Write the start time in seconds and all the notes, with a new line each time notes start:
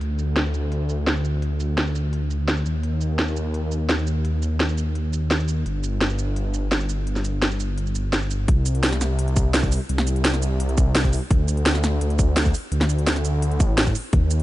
0.01 D2, closed hi-hat
0.19 closed hi-hat, shaker
0.36 snare, closed hi-hat
0.46 shaker
0.54 closed hi-hat, shaker
0.72 closed hi-hat
0.90 closed hi-hat, shaker
1.07 snare, closed hi-hat
1.16 shaker
1.25 closed hi-hat, shaker
1.42 closed hi-hat
1.60 closed hi-hat, shaker
1.78 snare, closed hi-hat
1.87 shaker
1.95 closed hi-hat, shaker
2.13 closed hi-hat
2.31 closed hi-hat, shaker
2.48 snare, closed hi-hat
2.57 shaker
2.66 D#2, closed hi-hat, shaker
2.83 closed hi-hat
3.01 closed hi-hat, shaker
3.19 snare, closed hi-hat
3.28 shaker
3.37 closed hi-hat, shaker
3.54 closed hi-hat
3.72 closed hi-hat, shaker
3.89 snare, closed hi-hat
3.98 shaker
4.07 closed hi-hat, shaker
4.25 closed hi-hat
4.42 closed hi-hat, shaker
4.60 snare, closed hi-hat
4.69 shaker
4.78 closed hi-hat, shaker
4.95 closed hi-hat
5.13 closed hi-hat, shaker
5.31 snare, closed hi-hat
5.40 shaker
5.48 closed hi-hat, shaker
5.66 G1, closed hi-hat
5.84 closed hi-hat, shaker
6.01 snare, closed hi-hat
6.10 shaker
6.19 closed hi-hat, shaker
6.36 closed hi-hat
6.54 closed hi-hat, shaker
6.72 snare, closed hi-hat
6.81 shaker
6.89 closed hi-hat, shaker
7.07 closed hi-hat
7.16 snare, shaker
7.25 closed hi-hat, shaker
7.42 snare, closed hi-hat
7.51 shaker
7.60 closed hi-hat, shaker
7.78 closed hi-hat
7.87 shaker
7.95 closed hi-hat, shaker
8.13 snare, closed hi-hat
8.22 shaker
8.31 closed hi-hat, shaker
8.48 C2, kick, closed hi-hat
8.66 closed hi-hat, shaker
8.75 closed hi-hat
8.83 snare, closed hi-hat
8.93 snare, closed hi-hat, shaker
9.01 snare, closed hi-hat, shaker
9.19 closed hi-hat
9.28 closed hi-hat
9.36 kick, closed hi-hat, shaker
9.54 snare, closed hi-hat
9.63 kick, shaker
9.72 open hi-hat, shaker
9.89 C2, closed hi-hat
9.98 snare
10.07 closed hi-hat, shaker
10.16 closed hi-hat
10.25 snare, closed hi-hat
10.34 snare, closed hi-hat, shaker
10.42 closed hi-hat, shaker
10.60 closed hi-hat
10.69 closed hi-hat
10.78 kick, closed hi-hat, shaker
10.95 snare, closed hi-hat
11.04 kick, shaker
11.13 open hi-hat, shaker
11.31 D2, kick, closed hi-hat
11.48 closed hi-hat, shaker
11.57 closed hi-hat
11.66 snare, closed hi-hat
11.75 snare, closed hi-hat, shaker
11.84 snare, closed hi-hat, shaker
12.01 D2, closed hi-hat
12.10 closed hi-hat
12.19 kick, closed hi-hat, shaker
12.37 snare, closed hi-hat
12.46 kick, shaker
12.54 open hi-hat, shaker
12.72 D2, closed hi-hat
12.81 snare
12.90 closed hi-hat, shaker
12.99 closed hi-hat
13.07 snare, closed hi-hat
13.16 snare, closed hi-hat, shaker
13.25 closed hi-hat, shaker
13.42 closed hi-hat
13.51 closed hi-hat
13.60 A1, kick, closed hi-hat, shaker
13.78 snare, closed hi-hat
13.87 kick, shaker
13.95 open hi-hat, shaker
14.13 D#2, kick, closed hi-hat
14.31 closed hi-hat, shaker
14.40 closed hi-hat